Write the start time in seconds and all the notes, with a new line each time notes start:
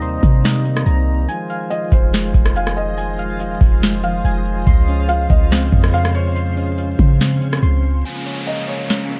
Already playing: D#2 C3 D#3 G3 A#3 C4 D#4 D#5 A#5
0.02 C5, closed hi-hat
0.23 C3, kick, closed hi-hat
0.44 D#4, snare, closed hi-hat
0.65 C4, closed hi-hat
0.77 cross-stick
0.86 C2 A#5, closed hi-hat
1.28 F3 G#3 F4 C5 D#5 G#5, closed hi-hat
1.50 F5, closed hi-hat
1.70 F4 D#5, closed hi-hat
1.92 F1 C5, kick, closed hi-hat
2.13 G#3, snare, closed hi-hat
2.34 F1 F3, kick, closed hi-hat
2.46 cross-stick
2.56 F5 G#5, closed hi-hat
2.67 cross-stick
2.77 D#5
2.98 G#5, closed hi-hat
3.19 F5, closed hi-hat
3.40 F4, closed hi-hat
3.61 F1, kick, open hi-hat
3.82 G#3, snare, closed hi-hat
4.04 F3 F5, closed hi-hat
4.25 F1 G#5, closed hi-hat
4.67 C#2 C#3 C#4 C5 C6, kick, closed hi-hat
4.88 C#4, closed hi-hat
5.09 F4 F5, closed hi-hat
5.30 C#2 D#5, kick, closed hi-hat
5.51 C4, snare, closed hi-hat
5.72 F2 C#3, kick, closed hi-hat
5.84 cross-stick
5.93 F5 C6, closed hi-hat
6.05 cross-stick
6.15 C#5
6.36 C6, closed hi-hat
6.57 C#4, closed hi-hat
6.78 F4, closed hi-hat
6.99 C#3, kick, closed hi-hat
7.20 C4, snare, closed hi-hat
7.41 C#3, closed hi-hat
7.53 cross-stick
7.63 C#2 C6, closed hi-hat
8.05 C#3 F3 G#3 A#3 F4 G#4 C#5 G#5, downlifter
8.26 C#5
8.47 A#4 D#5
8.68 C#5
8.90 C#4, snare
9.11 A#3